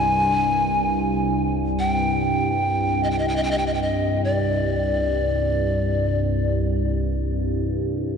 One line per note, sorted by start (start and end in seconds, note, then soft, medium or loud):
0.00 8.17 C2 medium
0.00 8.17 G2 medium
0.00 1.53 G#5 medium
1.79 3.05 G5 medium
3.04 3.12 D#5 medium
3.11 3.20 G5 medium
3.19 3.30 D#5 medium
3.28 3.38 G5 medium
3.36 3.45 D#5 medium
3.44 3.53 G5 medium
3.51 3.60 D#5 medium
3.58 3.68 G5 medium
3.67 3.76 D#5 medium
3.74 3.84 G5 medium
3.82 4.24 D#5 medium
4.24 6.53 D5 medium